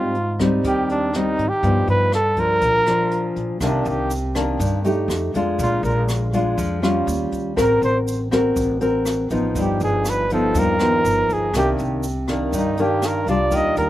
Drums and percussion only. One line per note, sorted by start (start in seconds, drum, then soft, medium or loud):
0.15 closed hi-hat soft
0.39 kick medium
0.39 cross-stick medium
0.39 closed hi-hat soft
0.64 kick medium
0.64 closed hi-hat medium
0.89 closed hi-hat soft
1.13 cross-stick medium
1.13 closed hi-hat soft
1.39 closed hi-hat soft
1.63 kick medium
1.63 closed hi-hat medium
1.88 closed hi-hat soft
2.12 cross-stick medium
2.12 closed hi-hat soft
2.37 kick soft
2.37 closed hi-hat soft
2.61 kick medium
2.61 closed hi-hat medium
2.86 cross-stick medium
2.86 closed hi-hat soft
3.11 closed hi-hat soft
3.36 closed hi-hat soft
3.61 kick medium
3.61 cross-stick medium
3.61 closed hi-hat soft
3.61 shaker medium
3.85 closed hi-hat soft
3.85 shaker soft
4.10 closed hi-hat soft
4.10 shaker medium
4.35 kick soft
4.35 cross-stick medium
4.35 closed hi-hat soft
4.35 shaker soft
4.60 kick medium
4.60 closed hi-hat medium
4.60 shaker medium
4.84 closed hi-hat soft
4.84 shaker soft
5.10 cross-stick medium
5.10 closed hi-hat soft
5.10 shaker medium
5.34 kick soft
5.34 closed hi-hat medium
5.34 shaker soft
5.59 kick medium
5.59 closed hi-hat medium
5.59 shaker medium
5.84 closed hi-hat soft
5.84 shaker soft
6.09 cross-stick medium
6.09 closed hi-hat soft
6.09 shaker medium
6.33 kick soft
6.33 closed hi-hat soft
6.33 shaker soft
6.58 kick medium
6.58 closed hi-hat medium
6.58 shaker medium
6.83 cross-stick medium
6.83 closed hi-hat soft
6.83 shaker soft
7.07 closed hi-hat soft
7.07 shaker medium
7.32 kick soft
7.32 closed hi-hat soft
7.32 shaker soft
7.57 kick medium
7.57 cross-stick medium
7.57 closed hi-hat soft
7.57 shaker medium
7.82 closed hi-hat soft
7.82 shaker soft
8.07 closed hi-hat soft
8.07 shaker medium
8.31 kick soft
8.31 cross-stick medium
8.31 closed hi-hat soft
8.31 shaker soft
8.56 kick medium
8.56 closed hi-hat medium
8.56 shaker medium
8.81 closed hi-hat soft
8.81 shaker soft
9.05 cross-stick medium
9.05 closed hi-hat soft
9.05 shaker medium
9.30 kick soft
9.30 closed hi-hat soft
9.30 shaker soft
9.55 kick medium
9.55 closed hi-hat medium
9.55 shaker medium
9.80 closed hi-hat soft
9.80 shaker soft
10.05 cross-stick medium
10.05 closed hi-hat soft
10.05 shaker medium
10.30 kick soft
10.30 closed hi-hat soft
10.30 shaker soft
10.55 kick medium
10.55 closed hi-hat medium
10.55 shaker medium
10.79 cross-stick medium
10.79 closed hi-hat soft
10.79 shaker soft
11.05 closed hi-hat soft
11.05 shaker medium
11.29 kick soft
11.29 closed hi-hat soft
11.29 shaker soft
11.54 kick medium
11.54 cross-stick medium
11.54 closed hi-hat medium
11.54 shaker medium
11.78 closed hi-hat soft
11.78 shaker soft
12.03 closed hi-hat soft
12.03 shaker medium
12.28 kick soft
12.28 cross-stick medium
12.28 closed hi-hat soft
12.28 shaker soft
12.53 kick medium
12.53 closed hi-hat medium
12.53 shaker medium
12.77 closed hi-hat soft
12.77 shaker soft
13.02 cross-stick medium
13.02 closed hi-hat soft
13.02 shaker medium
13.27 kick soft
13.27 closed hi-hat soft
13.27 shaker soft
13.51 kick medium
13.51 closed hi-hat medium
13.51 shaker medium
13.76 closed hi-hat soft
13.76 shaker soft